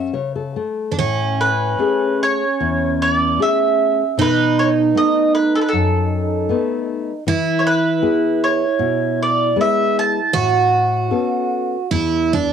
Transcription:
Already playing: F#2 C#4 A4 E5
0.13 C#3 C#5
0.36 A4
0.56 A3
0.92 D4
0.98 A2 C#4
1.41 B4
1.78 A3 C#4 G#4
2.23 C#5
2.60 E2
3.02 D5
3.39 A3 C#4 G#4 E5
4.17 B2 D#4
4.21 B4
4.59 C#5
4.95 A3 B3 D#4 D#5
5.35 B4
5.55 A4
5.61 B4
5.69 A4
5.73 F#2
6.49 A3 B3 D#4
7.27 E3 E4
7.59 C#5
7.67 B4
8.02 B3 E4 G#4
8.44 C#5
8.79 B2
9.23 D5
9.56 G#3 B3 E4
9.61 E5
9.99 A5
10.33 A2 F#4
11.11 B3 C#4 A4
11.91 E2 E4
12.33 D4

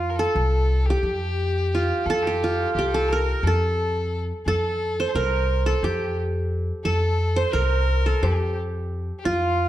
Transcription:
Already playing: F2 F4
0.10 A#4
0.16 A4
0.35 C2
0.85 G4
0.90 G4
1.03 F2
1.75 F4
2.06 F2 A4
2.10 A4
2.23 G4
2.27 G4
2.44 F4
2.74 C2 G4
2.79 G4
2.90 A4
2.94 A4
3.08 A#4
3.13 A#4
3.43 F2 A4
3.47 A4
4.46 F2 A4
5.00 C5
5.09 C5
5.15 C2 A#4
5.66 A4
5.83 F2 G4
6.85 F2 A4
7.36 C5
7.53 C2 A#4
8.06 A4
8.22 F2 G4
9.19 G4
9.24 F2 F4

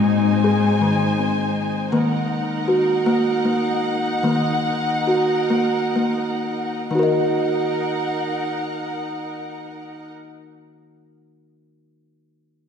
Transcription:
Already playing: G#2 G#3 C4 D#4 C5 G#5
0.44 G#4
0.81 D#3
1.19 C4
1.92 D#3 A#3 D#4 A#4 F#5
2.68 F#4
3.06 A#3
3.45 A#3
4.23 D#3 A#3 A#4
5.07 F#4
5.50 A#3
5.96 A#3
6.90 D#3 D#4 A#4 F#5
6.95 F#4
6.99 A#4 D#5

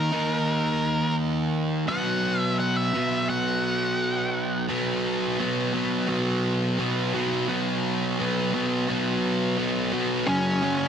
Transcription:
Already playing: D#3 A#3 D#4 A#4
0.12 D#3 A#3 D#4
1.88 B2 F#3 B3 F#5
2.40 E5
2.60 F#5
2.76 E5
2.94 B2 F#3 B3
3.30 F#5
4.69 B2 F#3 B3
5.39 B2 F#3 B3
5.74 B2 F#3 B3
6.08 B2 F#3 B3
6.79 B2 F#3 B3
7.14 B2 F#3 B3
7.48 B2 F#3 B3
8.19 B2 F#3 B3
8.53 B2 F#3 B3
8.88 B2 F#3 B3
9.58 B2 F#3 B3
9.92 B2 F#3 B3
10.27 F#2 C#3 F#3 C#4 C#5
10.62 F#2 C#3 F#3

